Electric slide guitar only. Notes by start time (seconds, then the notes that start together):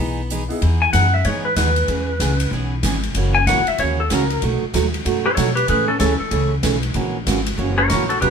0.82 G#5
0.93 F#5
1.14 E5
1.25 C#5
1.45 B4
1.57 B4
3.35 G#5
3.47 F#5
3.68 E5
3.80 C#5
4.00 A4
4.12 A#4
5.26 A4 C#5
5.34 A4 C#5
5.55 G4 B4
5.69 G#4 B4
5.88 C#4 A4
5.99 C#4 A4
6.20 A4
7.78 A#4 C#5
7.88 A#4 C#5
8.09 F#4 A4
8.21 G4 B4